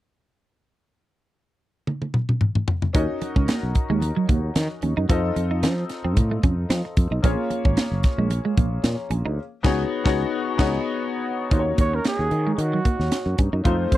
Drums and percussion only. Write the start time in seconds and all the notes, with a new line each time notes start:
1.87 high tom
2.02 high tom
2.14 mid tom
2.29 mid tom
2.41 mid tom
2.55 mid tom
2.68 floor tom
2.82 floor tom
2.94 kick, closed hi-hat, muted conga
3.22 closed hi-hat, muted conga
3.36 kick
3.48 snare, closed hi-hat, high conga
3.75 kick, closed hi-hat
4.02 closed hi-hat, muted conga
4.29 kick, closed hi-hat, muted conga, low conga
4.55 snare, closed hi-hat, high conga
4.82 closed hi-hat, high conga
5.09 kick, closed hi-hat, muted conga
5.36 closed hi-hat, muted conga
5.63 snare, closed hi-hat, high conga
5.89 snare, closed hi-hat
6.17 kick, closed hi-hat, muted conga, low conga
6.43 kick, closed hi-hat, low conga
6.70 snare, closed hi-hat, high conga
6.97 kick, closed hi-hat, high conga
7.24 kick, closed hi-hat, muted conga
7.50 closed hi-hat, muted conga
7.65 kick
7.77 snare, closed hi-hat, high conga
8.03 kick, snare, closed hi-hat
8.30 closed hi-hat, muted conga
8.57 kick, closed hi-hat, muted conga, low conga
8.84 snare, closed hi-hat, high conga
9.11 closed hi-hat, high conga
9.64 kick, snare, crash
10.06 kick, snare
10.59 kick, snare, crash
11.51 kick, closed hi-hat
11.78 kick, closed hi-hat
12.05 snare, closed hi-hat
12.31 closed hi-hat
12.59 closed hi-hat
12.85 kick, closed hi-hat
13.00 snare
13.12 snare, closed hi-hat
13.38 kick, closed hi-hat
13.65 kick, closed hi-hat
13.92 kick, closed hi-hat